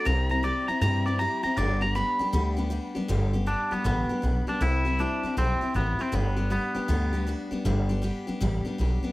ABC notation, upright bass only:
X:1
M:4/4
L:1/8
Q:"Swing" 1/4=158
K:G
V:1 name="Upright bass" clef=bass
C,,3 z G,,3 z | G,,,3 z D,,3 z | G,,,3 z A,,, z B,,, z | C,,3 z B,,, z A,,, z |
G,,,3 z D,,3 z | G,,,3 z A,,, z B,,, z |]